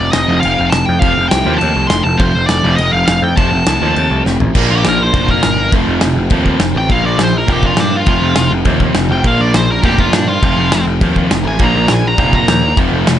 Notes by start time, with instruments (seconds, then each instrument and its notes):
Already playing: overdriven electric guitar F2 C3 F3 A3 C4, lead electric guitar D5
0.12 picked electric bass F1, lead electric guitar D#5, snare, crash
0.28 picked electric bass F1, overdriven electric guitar F2 C3 F3
0.41 picked electric bass F1, lead electric guitar F5, crash
0.60 picked electric bass F1
0.70 lead electric guitar A5, snare, crash
0.74 picked electric bass F1
0.85 picked electric bass F2, lead electric guitar G5
0.99 picked electric bass F1, overdriven electric guitar F2 C3 F3 A3, lead electric guitar F5, kick, crash
1.03 overdriven electric guitar C4
1.18 picked electric bass F1
1.29 picked electric bass C2, lead electric guitar G5, snare, crash
1.45 picked electric bass D#2, overdriven electric guitar F2 C3 F3
1.55 lead electric guitar G5 A5
1.61 picked electric bass D#2, crash
1.76 picked electric bass C2
1.87 picked electric bass F1, lead electric guitar C6, snare, crash
2.03 picked electric bass F1, lead electric guitar A5
2.17 picked electric bass F1, overdriven electric guitar F2 C3 F3 A3 C4, lead electric guitar C5, kick, crash
2.35 picked electric bass F1
2.46 picked electric bass F1, lead electric guitar D5, snare, crash
2.63 picked electric bass F1, overdriven electric guitar F2 C3 F3
2.76 picked electric bass F1, lead electric guitar D#5, crash
2.93 picked electric bass F1, lead electric guitar F5
3.07 picked electric bass F1, lead electric guitar F5, snare, crash
3.22 picked electric bass F2, lead electric guitar G5
3.36 picked electric bass F1, overdriven electric guitar F2 C3 F3 A3 C4, lead electric guitar A5, kick, crash
3.52 picked electric bass F1
3.67 picked electric bass C2, snare, crash
3.81 picked electric bass D#2, overdriven electric guitar F2 C3 F3
3.96 picked electric bass D#2, crash
4.11 picked electric bass C2
4.26 picked electric bass F1, snare
4.40 picked electric bass A1, floor tom
4.54 picked electric bass A#1, overdriven electric guitar A#2 F3 A#3 D4, kick, crash
4.70 picked electric bass A#1, lead electric guitar G4
4.84 picked electric bass A#1, overdriven electric guitar A#2 F3, snare, crash
4.88 lead electric guitar A#4
5.03 lead electric guitar C5
5.13 picked electric bass F1, overdriven electric guitar A#2 F3 A#3, kick, crash
5.29 lead electric guitar A#4, kick
5.42 picked electric bass G1, overdriven electric guitar A#2 F3, snare, crash
5.56 overdriven electric guitar A#2 F3 A#3 D4
5.71 picked electric bass F1, overdriven electric guitar F2 C3 F3 A3 C4, kick, crash
5.87 picked electric bass F1
6.01 picked electric bass F1, overdriven electric guitar F2 C3, snare, crash
6.15 picked electric bass F1
6.30 picked electric bass D#2, overdriven electric guitar F2 C3 F3, kick, crash
6.46 kick
6.60 picked electric bass F1, overdriven electric guitar F2 C3, snare, crash
6.74 picked electric bass A1, overdriven electric guitar F2 C3 F3 A3 C4, lead electric guitar G5
6.89 picked electric bass A#1, overdriven electric guitar A#2 F3 A#3 D4, lead electric guitar F5, kick, crash
7.04 picked electric bass A#1, lead electric guitar D5
7.18 picked electric bass A#1, overdriven electric guitar A#2 F3, snare, crash
7.23 lead electric guitar C5
7.38 lead electric guitar A#4
7.47 picked electric bass F1, overdriven electric guitar A#2 F3 A#3, kick, crash
7.52 lead electric guitar G4
7.63 lead electric guitar F4, kick
7.77 picked electric bass G2, overdriven electric guitar A#2 F3, lead electric guitar D4, snare, crash
7.91 overdriven electric guitar A#2 F3 A#3 D4
7.96 lead electric guitar F4
8.06 picked electric bass F1, overdriven electric guitar F2 C3 F3 A3 C4, kick, crash
8.22 picked electric bass F1
8.36 picked electric bass F1, overdriven electric guitar F2 C3, snare, crash
8.51 picked electric bass F1
8.65 picked electric bass D#2, overdriven electric guitar F2 C3 F3, kick, crash
8.80 kick
8.95 picked electric bass F1, overdriven electric guitar F2 C3, snare, crash
9.09 picked electric bass F1, overdriven electric guitar F2 C3 F3 A3 C4, lead electric guitar G5
9.23 picked electric bass A#1, overdriven electric guitar A#2 F3 A#3 D4, kick, crash
9.27 lead electric guitar F5
9.39 picked electric bass A#1, lead electric guitar D5
9.54 picked electric bass A#1, overdriven electric guitar A#2 F3, lead electric guitar C5, snare, crash
9.71 lead electric guitar A#4
9.82 picked electric bass F1, overdriven electric guitar A#2 F3 A#3, lead electric guitar G4, kick, crash
9.99 lead electric guitar F4, kick
10.12 picked electric bass G2, overdriven electric guitar A#2 F3, lead electric guitar D4, snare, crash
10.27 overdriven electric guitar A#2 F3 A#3 D4, lead electric guitar F4
10.41 picked electric bass F1, overdriven electric guitar F2 C3 F3 A3 C4, kick, crash
10.57 picked electric bass F1
10.72 picked electric bass F1, overdriven electric guitar F2 C3, snare, crash
10.86 picked electric bass F1
11.01 picked electric bass D#2, overdriven electric guitar F2 C3 F3, kick, crash
11.16 kick
11.30 picked electric bass F1, overdriven electric guitar F2 C3, snare, crash
11.44 picked electric bass A1, overdriven electric guitar F2 C3 F3 A3 C4, lead electric guitar G#5
11.58 picked electric bass A#1, overdriven electric guitar A#2 F3 A#3 D4, kick, crash
11.64 lead electric guitar A#5
11.75 picked electric bass A#1
11.88 picked electric bass A#1, overdriven electric guitar A#2 F3, snare, crash
11.93 lead electric guitar G#5
12.07 lead electric guitar A#5
12.18 picked electric bass F1, overdriven electric guitar A#2 F3 A#3, kick, crash
12.33 lead electric guitar A#5, kick
12.48 picked electric bass D#2, overdriven electric guitar A#2 F3, snare, crash
12.61 overdriven electric guitar A#2 F3 A#3 D4
12.76 picked electric bass F1, overdriven electric guitar F2 C3 F3 A3 C4, kick, crash
12.92 picked electric bass F1
13.06 picked electric bass F1, overdriven electric guitar F2 C3, snare, crash